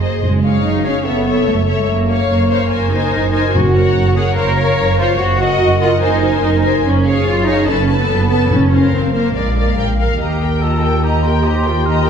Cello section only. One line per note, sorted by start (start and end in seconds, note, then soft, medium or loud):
0.23 0.62 G#3 medium
0.64 0.85 D#4 medium
0.85 1.06 C#4 medium
1.06 1.47 B3 medium
1.47 1.55 A3 medium
1.79 1.89 G#3 soft
1.88 2.29 A#3 medium
2.30 2.91 A#3 medium
2.92 3.32 D#4 medium
3.33 3.54 D#4 medium
3.54 4.14 F#4 medium
4.16 4.24 G#4 medium
4.36 4.97 A#4 medium
5.00 5.08 F4 medium
5.19 5.80 F#4 medium
5.82 5.90 F4 medium
6.02 6.42 D#4 medium
6.44 6.64 D#4 medium
6.85 7.24 C#4 medium
7.26 7.47 F4 medium
7.47 7.68 D#4 medium
7.67 7.99 C#4 medium
7.99 8.08 B3 medium
8.09 8.50 B3 medium
8.51 8.93 C#4 medium
8.93 9.14 C4 medium
9.14 9.35 A#3 medium
9.35 9.78 G#3 medium
10.20 12.10 D#2 soft